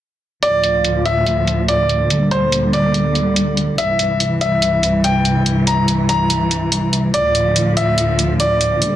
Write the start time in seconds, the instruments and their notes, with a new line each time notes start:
0.43 string section D2 A2 F3, grand piano D5, closed hi-hat
0.64 closed hi-hat
0.85 closed hi-hat
1.06 grand piano E5, closed hi-hat
1.26 closed hi-hat
1.47 closed hi-hat
1.68 grand piano D5, closed hi-hat
1.89 closed hi-hat
2.10 string section A#2 D3 G3, closed hi-hat
2.31 grand piano C5, closed hi-hat
2.52 closed hi-hat
2.73 grand piano D5, closed hi-hat
2.94 closed hi-hat
3.15 closed hi-hat
3.36 closed hi-hat
3.57 closed hi-hat
3.78 string section C2 G2 E3, grand piano E5, closed hi-hat
3.99 closed hi-hat
4.20 closed hi-hat
4.41 grand piano E5, closed hi-hat
4.62 closed hi-hat
4.83 closed hi-hat
5.04 grand piano G5, closed hi-hat
5.25 closed hi-hat
5.46 closed hi-hat
5.67 grand piano A#5, closed hi-hat
5.88 closed hi-hat
6.09 grand piano A#5, closed hi-hat
6.30 closed hi-hat
6.51 closed hi-hat
6.72 closed hi-hat
6.93 closed hi-hat
7.14 string section D2 A2 F3, grand piano D5, closed hi-hat
7.35 closed hi-hat
7.56 closed hi-hat
7.77 grand piano E5, closed hi-hat
7.98 closed hi-hat
8.19 closed hi-hat
8.40 grand piano D5, closed hi-hat
8.61 closed hi-hat
8.82 string section A#2 D3 G3, closed hi-hat